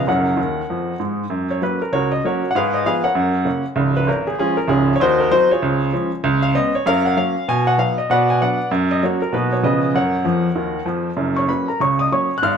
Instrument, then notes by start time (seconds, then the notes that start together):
upright piano
0.07 F#1 F#2 A#4 C#5 F#5
0.37 D#2 D#3
0.70 F2 F3
1.00 G#2 G#3
1.30 F#2
1.51 C#5
1.61 F#3 A#3 C#4 B4
1.82 A#4
1.93 C#2 F#4 A#4 C#5
2.12 D#5
2.24 F#3 A#3 C#4 F#4 A#4 C#5
2.51 F#5
2.55 G#2 G#4 B4 F5
2.74 D#5
2.85 F3 B3 G#4 B4 F5
3.04 A#4 C#5 F#5
3.15 F#2
3.45 C#3 A#3 C#4
3.76 C#1 C#2
3.97 B4
4.07 G#1 A#4
4.27 G#4
4.38 F3 G#3 C#4 F4 G#4
4.57 A#4
4.68 C#1 C#2 C#4 F4 G#4
4.96 C#5
5.00 D#2 D#4 F#4 C5
5.20 A#4
5.31 F#3 C4 D#4 F#4 C5
5.51 F4 G#4 C#5
5.63 C#2
5.93 F3 G#3 C#4
6.24 C#2
6.42 F5
6.54 G#3 B3 C#4 D#5
6.75 C#5
6.86 F#2 A#4 C#5 F5
7.05 F#5
7.17 F#3 A#3 C#4 F5
7.48 B2 G#5
7.67 F#5
7.78 F#3 B3 D#4 F5
7.98 D#5
8.10 B2 B4 D5 F#5
8.30 G#5
8.41 F#3 B3 D4 B4 D5 F#5
8.71 F#2
8.91 D#5
9.03 F#3 A#3 C#4 F#4 A#4 C#5
9.22 A#4
9.33 B2 F#3 A#3 D#4 F#4 B4
9.53 C#5
9.63 C#3 F3 B3 C#4 G#4 B4 D#5
9.94 F#2 A#4 C#5 F#5
10.25 F2 F3
10.56 D#2 D#3
10.85 F2 F3
11.17 F#1 F#2
11.36 C#5 C#6
11.48 F#3 A#3 C#4 B4 B5
11.68 A#4 A#5
11.80 C#2 C#3 C#5 C#6
11.99 D#5 D#6
12.11 F#3 A#3 C#4 C#5 C#6
12.38 F#6
12.43 G#1 G#2 F5 F6